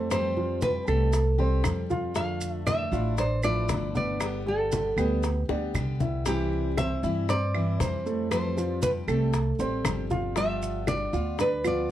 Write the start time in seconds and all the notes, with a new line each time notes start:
Already playing: F2 A3 E4 A4 C5
0.10 F3 G3 C4 G4 C5, high bongo, high conga, claves, maracas
0.37 F3 F4, high bongo, high conga
0.62 F3 G3 C4 G4 B4, high bongo, high conga, maracas
0.87 C2 G3 A3 C4 G4 A4, high conga, claves, maracas
1.13 muted steel-string acoustic guitar stroke, high bongo, high conga, maracas
1.38 G3 C4 G4 C5, high bongo, high conga
1.64 F2 F3 G3 C4 G4, high bongo, low bongo, high conga, claves, maracas
1.90 F4 F5, high bongo, high conga, maracas
2.14 D3 F3 A3 D4 F5, high bongo, high conga, maracas
2.41 high conga, maracas
2.51 E5
2.66 D3 A3 D4 E4 D5 E5, high bongo, high conga, claves, maracas
2.91 A1 A3 D4 E4 F4 F5, high conga, maracas
3.18 D4 C5 D5, muted steel-string acoustic guitar stroke, high bongo, high conga, maracas
3.43 F3 A3 D4 E4 D5, high conga, claves, maracas
3.69 G1 D3 A3 D4 E4, high bongo, low bongo, high conga, maracas
3.95 B3 B4 D5, high conga, maracas
4.20 D3 G3 B3 G4, high bongo, high conga, claves, maracas
4.46 G3 G4 A4, high bongo, high conga
4.72 D3 G3 B3 G4, high bongo, high conga, maracas
4.97 D2 G3 B3 G4 B4, high conga, claves, maracas
5.23 muted steel-string acoustic guitar stroke, high bongo, high conga, maracas
5.49 D2 G3 B3 D4 G4 D5, high bongo, high conga
5.74 C2 D3 G3 B3 G4, high bongo, high conga, claves, maracas
6.00 E4 E5, low bongo, high conga, maracas
6.25 C3 E3 G3 C4 E4 G4, high bongo, high conga, maracas
6.53 high conga
6.77 E3 G3 C4 E4 C5 E5, high bongo, high conga, claves, maracas
7.03 G2 E3 G3 C4 E4 E5, high conga, maracas
7.29 C4 C5 D5, muted steel-string acoustic guitar stroke, high bongo, high conga, maracas
7.54 E3 G3 C4 E4, high conga, claves
7.80 F2 E3 G3 C4 E4 C5, high bongo, low bongo, high conga, maracas
8.06 A3 A4, maracas
8.31 F3 G3 C4 G4 C5, high bongo, high conga, claves, maracas
8.57 F3 F4, high bongo, high conga, maracas
8.82 F3 G3 C4 G4 B4, high bongo, high conga, maracas
9.08 C2 G3 A3 C4 G4 A4, high conga, claves, maracas
9.33 muted steel-string acoustic guitar stroke, high bongo, high conga, maracas
9.59 A1 G3 C4 G4 C5, high bongo, high conga, maracas
9.84 G1 F3 G3 C4 G4, high bongo, low bongo, high conga, claves, maracas
10.10 F4 F5, high bongo, high conga, maracas
10.36 F3 G3 B3 F4 E5, high bongo, high conga, maracas
10.62 high conga, maracas
10.87 G3 B3 D4 F4 D5, high bongo, high conga, claves, maracas
11.13 D2 B3 F4 F5, high conga, maracas
11.38 D4 B4 D5, muted steel-string acoustic guitar stroke, high bongo, high conga, maracas
11.64 F3 B3 F4 D5, high conga, claves, maracas